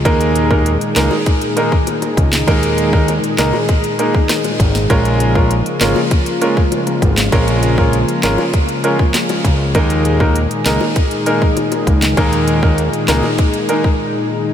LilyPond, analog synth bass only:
\new Staff \with { instrumentName = "Analog synth bass" } { \clef bass \time 4/4 \key ees \dorian \tempo 4 = 99 ees,4~ ees,16 r16 des,16 r4. r16 des,8 | ees,4~ ees,16 r16 des,16 r4. r16 aes,,8 | bes,,4~ bes,,16 r16 aes,,16 r4. r16 aes,,8 | bes,,4~ bes,,16 r16 aes,,16 r4. r16 des,8 |
ees,4~ ees,16 r16 des,16 r4. r16 des,8 | ees,4~ ees,16 r16 des,16 r2 r16 | }